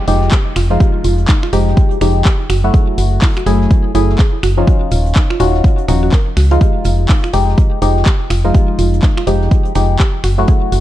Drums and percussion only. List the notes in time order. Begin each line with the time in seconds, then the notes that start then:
0.08 closed hi-hat, open hi-hat
0.21 snare
0.31 kick, snare, clap, closed hi-hat
0.56 finger snap, snare, closed hi-hat, open hi-hat
0.80 kick, closed hi-hat
1.04 closed hi-hat, open hi-hat
1.18 closed hi-hat
1.28 kick, snare, clap, closed hi-hat
1.43 finger snap, snare
1.53 closed hi-hat, open hi-hat
1.68 snare
1.77 kick, closed hi-hat
1.91 closed hi-hat
2.01 finger snap, snare, closed hi-hat, open hi-hat
2.25 kick, snare, clap, closed hi-hat
2.50 finger snap, closed hi-hat, open hi-hat
2.74 kick, closed hi-hat
2.98 closed hi-hat, open hi-hat
3.22 kick, snare, clap, open hi-hat
3.37 finger snap, closed hi-hat
3.46 closed hi-hat, open hi-hat
3.61 snare
3.71 kick, closed hi-hat
3.95 closed hi-hat, open hi-hat
4.09 snare
4.19 kick, snare, clap, closed hi-hat
4.43 finger snap, snare, closed hi-hat, open hi-hat
4.67 kick, closed hi-hat
4.91 closed hi-hat, open hi-hat
5.06 closed hi-hat
5.15 kick, snare, clap, closed hi-hat
5.30 finger snap, snare
5.40 closed hi-hat, open hi-hat
5.54 snare
5.64 kick, closed hi-hat
5.78 closed hi-hat
5.88 finger snap, snare, closed hi-hat, open hi-hat
6.12 kick, snare, clap, closed hi-hat
6.37 finger snap, snare, open hi-hat
6.52 closed hi-hat
6.61 kick, closed hi-hat
6.84 closed hi-hat, open hi-hat
7.09 kick, snare, clap, open hi-hat
7.24 finger snap, closed hi-hat
7.33 closed hi-hat, open hi-hat
7.48 snare
7.58 kick, closed hi-hat
7.82 closed hi-hat, open hi-hat
7.97 snare
8.06 kick, snare, clap, closed hi-hat
8.30 finger snap, snare, closed hi-hat, open hi-hat
8.55 kick, closed hi-hat
8.79 closed hi-hat, open hi-hat
8.94 closed hi-hat
9.02 kick, snare, clap, closed hi-hat
9.17 finger snap, snare
9.27 closed hi-hat, open hi-hat
9.41 snare
9.51 kick, closed hi-hat
9.65 closed hi-hat
9.75 finger snap, snare, closed hi-hat, open hi-hat
9.99 kick, snare, clap, closed hi-hat
10.24 finger snap, closed hi-hat, open hi-hat
10.48 kick, closed hi-hat
10.72 closed hi-hat, open hi-hat